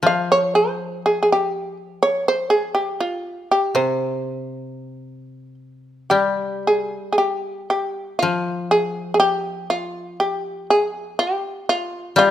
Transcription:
0.03 koto F3, shamisen F5
0.32 shamisen C#5
0.55 shamisen C5
1.06 shamisen G#4
1.23 shamisen G#4
1.32 shamisen G4
2.03 shamisen C#5
2.28 shamisen C5
2.50 shamisen G#4
2.75 shamisen G4
3.00 shamisen F4
3.51 shamisen G4
3.75 koto C3, shamisen C5
6.10 koto G3, shamisen G4
6.67 shamisen G#4
7.12 shamisen G#4
7.18 shamisen G4
7.70 shamisen G4
8.19 koto F3, shamisen F4
8.71 shamisen G#4
9.14 shamisen G#4
9.20 shamisen G4
9.70 shamisen F4
10.20 shamisen G4
10.70 shamisen G#4
11.19 shamisen G4
11.69 shamisen F4
12.16 koto G3, shamisen F4

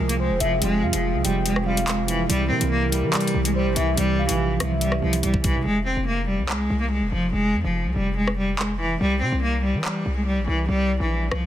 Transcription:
Already playing: tine electric piano C3 F3 G#3 F4, ambient pad F3 C4 G#4, soft synth lead A#4
0.00 808-style bass C2
0.09 cello A#3, closed hi-hat
0.20 cello G#3, soft synth lead C5
0.30 808-style bass E1
0.40 808-style bass F1, cello F3, soft synth lead E5, closed hi-hat
0.61 808-style bass F1, tine electric piano C3 F3 G#3 F4, cello G#3, closed hi-hat
0.82 808-style bass F2, soft synth lead F5
0.93 808-style bass F1, cello F3, closed hi-hat
1.14 808-style bass C2
1.23 808-style bass F1, tine electric piano C3 F3 G#3 F4, cello G3, soft synth lead G5, closed hi-hat
1.46 cello G#3, closed hi-hat
1.56 cross-stick
1.65 tine electric piano C3 F3 G#3 F4, cello G3, soft synth lead F5
1.77 closed hi-hat
1.88 cello G#3, clap, closed hi-hat
2.07 tine electric piano C3 F3 G#3 E4, cello E3, closed hi-hat
2.28 808-style bass C2, tine electric piano C3 E3 G3 E4, ambient pad E3 G4, cello G3, closed hi-hat
2.50 808-style bass C3, cello C4, soft synth lead A#4
2.59 808-style bass C2, tine electric piano C3 E3 G3 E4, closed hi-hat
2.71 cello A#3
2.90 tine electric piano C3 E3 G3 E4, cello G3, closed hi-hat
3.03 808-style bass E3
3.13 cello G3, clap, closed hi-hat
3.21 closed hi-hat
3.27 closed hi-hat
3.34 808-style bass C2
3.45 cello G#3, closed hi-hat
3.55 cello G3, soft synth lead C5
3.66 808-style bass A#1
3.76 808-style bass C2, cello E3, soft synth lead E5, closed hi-hat
3.95 808-style bass C2, tine electric piano C3 E3 G3 G4, cello G3, closed hi-hat
4.18 soft synth lead F5
4.29 808-style bass A#1, cello E3, closed hi-hat
4.59 808-style bass C2, tine electric piano C3 E3 G3 E4, cello F3, soft synth lead E5, cross-stick, closed hi-hat
4.81 cello G3, closed hi-hat
4.92 cross-stick
5.01 808-style bass C2, tine electric piano C3 E3 G3 E4, cello F3
5.13 closed hi-hat
5.23 808-style bass C2, cello G3, closed hi-hat
5.34 kick
5.43 tine electric piano C3 E3 G3 E4, cello E3, kick, closed hi-hat
5.55 808-style bass C3
5.65 808-style bass F1, cello G#3
5.86 cello C4
5.97 808-style bass F1
6.07 cello A#3
6.28 cello G3
6.39 808-style bass C2
6.49 cello G#3, clap
6.70 808-style bass C2
6.81 cello A#3
6.91 cello G#3
7.02 808-style bass E1
7.12 808-style bass F1, cello F3
7.33 808-style bass F1, cello G#3
7.54 808-style bass F2
7.64 808-style bass F1, cello F3
7.85 808-style bass C2
7.96 808-style bass F1, cello G3
8.17 cello G#3
8.28 cross-stick
8.38 cello G3
8.59 cello G#3, clap
8.80 cello E3
9.01 808-style bass C2, cello G3
9.22 808-style bass C3, cello C4
9.32 808-style bass C2
9.43 cello A#3
9.64 cello G3
9.74 808-style bass E3
9.84 cello G3, clap
10.06 808-style bass C2
10.16 cello G#3
10.26 cello G3
10.37 808-style bass A#1
10.47 808-style bass C2, cello E3
10.69 808-style bass C2, cello G3
11.00 808-style bass A#1, cello E3
11.31 808-style bass C2, cello F3, cross-stick

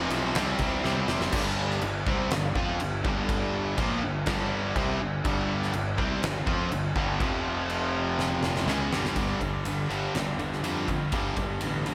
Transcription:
Already playing: distorted electric guitar F2 C3 F3
0.10 picked electric bass B1, distorted electric guitar F2 C3 F3, ride
0.34 picked electric bass C2, distorted electric guitar C3 G3 C4, snare, ride
0.59 picked electric bass C2, kick, ride
0.84 picked electric bass C2, distorted electric guitar C3 G3 C4, snare
1.08 picked electric bass F1, distorted electric guitar C3 G3 C4, snare
1.21 snare
1.32 picked electric bass G1, distorted electric guitar G2 D3 G3, kick, crash
1.70 snare
1.82 picked electric bass G1, distorted electric guitar G2 D3, crash
2.07 picked electric bass C2, distorted electric guitar C3 G3 C4, kick
2.31 picked electric bass G1, distorted electric guitar G2 D3, snare, crash
2.55 picked electric bass F2, distorted electric guitar F3 C4 F4, kick
2.80 picked electric bass G1, distorted electric guitar G2 D3, crash
3.04 picked electric bass G1, distorted electric guitar G2 D3 G3, kick
3.29 kick, crash
3.78 picked electric bass A#1, distorted electric guitar A#2 F3 A#3, kick, crash
4.03 picked electric bass G1, distorted electric guitar G2 D3
4.26 picked electric bass G1, distorted electric guitar G2 D3 G3, kick, snare, crash
4.75 picked electric bass C2, distorted electric guitar C3 G3 C4, kick, crash
5.00 picked electric bass G1, distorted electric guitar G2 D3
5.24 picked electric bass G1, distorted electric guitar G2 D3 G3, kick, crash
5.62 snare
5.73 picked electric bass G1, distorted electric guitar G2 D3, crash
5.97 picked electric bass C2, distorted electric guitar C3 G3 C4, kick
6.22 picked electric bass G1, distorted electric guitar G2 D3, snare, crash
6.46 picked electric bass F2, distorted electric guitar F3 C4 F4, kick
6.71 picked electric bass G1, distorted electric guitar G2 D3, crash
6.96 picked electric bass G1, distorted electric guitar G2 D3 G3, kick
7.20 picked electric bass F1, distorted electric guitar F2 C3 F3, kick, crash
7.70 crash
8.19 snare
8.43 snare
8.56 snare
8.66 picked electric bass C#2, distorted electric guitar C#3 G#3 C#4, snare
8.90 picked electric bass G1, distorted electric guitar G2 D3 G3, snare
9.05 snare
9.16 picked electric bass G1, distorted electric guitar G2 D3 G3, kick, ride
9.41 picked electric bass G1, distorted electric guitar G2 D3 G3, kick, ride
9.65 picked electric bass G1, distorted electric guitar G2 D3 G3, ride
9.89 picked electric bass G1, distorted electric guitar G2 D3 G3, ride
10.15 picked electric bass G1, distorted electric guitar G2 D3 G3, snare, ride
10.39 picked electric bass G1, distorted electric guitar G2 D3 G3, ride
10.52 snare
10.63 picked electric bass F2, distorted electric guitar G2 D3 G3, ride
10.88 distorted electric guitar G2 D3 G3, kick, ride
11.12 picked electric bass G1, distorted electric guitar G2 D3 G3, kick, ride
11.37 picked electric bass G1, distorted electric guitar G2 D3 G3, kick, ride
11.61 picked electric bass A1, distorted electric guitar G2 D3 G3, ride
11.86 distorted electric guitar G2 D3 G3, ride

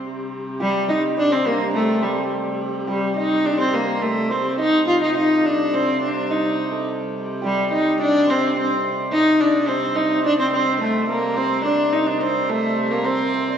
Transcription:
0.03 hurdy-gurdy C3 G3
0.60 viola da gamba G3, hammered dulcimer G4
0.88 viola da gamba D#4, hammered dulcimer D#5
1.17 viola da gamba D4, hammered dulcimer D5
1.31 viola da gamba C4, hammered dulcimer C5
1.45 viola da gamba A#3, hammered dulcimer A#4
1.74 viola da gamba A3, hammered dulcimer A4
2.02 viola da gamba G3, hammered dulcimer G4
2.88 viola da gamba G3, hammered dulcimer G4
3.17 viola da gamba D#4, hammered dulcimer D#5
3.45 viola da gamba D4, hammered dulcimer D5
3.59 viola da gamba C4, hammered dulcimer C5
3.72 viola da gamba A#3, hammered dulcimer A#4
4.01 viola da gamba A3, hammered dulcimer A4
4.30 viola da gamba C4, hammered dulcimer C5
4.58 hurdy-gurdy C3 G3, viola da gamba D#4, hammered dulcimer D#5
4.88 viola da gamba F4, hammered dulcimer F5
5.01 viola da gamba D#4, hammered dulcimer D#5
5.15 viola da gamba D#4, hammered dulcimer D#5
5.44 viola da gamba D4, hammered dulcimer D5
5.74 viola da gamba C4, hammered dulcimer C5
6.01 viola da gamba D4, hammered dulcimer D5
6.30 viola da gamba D#4, hammered dulcimer D#5
6.72 hammered dulcimer A4
7.42 viola da gamba G3, hammered dulcimer G4
7.71 viola da gamba D#4, hammered dulcimer D#5
7.99 viola da gamba D4, hammered dulcimer D5
8.27 viola da gamba C4, hammered dulcimer C5
8.55 viola da gamba C4, hammered dulcimer C5
9.12 hurdy-gurdy C3 G3, viola da gamba D#4, hammered dulcimer D#5
9.40 viola da gamba D4, hammered dulcimer D5
9.68 viola da gamba C4, hammered dulcimer C5
9.96 viola da gamba D#4, hammered dulcimer D#5
10.24 viola da gamba D4, hammered dulcimer D5
10.39 viola da gamba C4, hammered dulcimer C5
10.53 viola da gamba C4, hammered dulcimer C5
10.81 viola da gamba A3, hammered dulcimer A4
11.09 viola da gamba A#3, hammered dulcimer A#4
11.37 viola da gamba C4, hammered dulcimer C5
11.65 viola da gamba D4, hammered dulcimer D5
11.93 viola da gamba D#4, hammered dulcimer D#5
12.07 viola da gamba D4, hammered dulcimer D5
12.21 viola da gamba C4, hammered dulcimer C5
12.49 viola da gamba A3, hammered dulcimer A4
12.91 viola da gamba A#3, hammered dulcimer A#4
13.05 viola da gamba C4, hammered dulcimer C5
13.48 hammered dulcimer D5

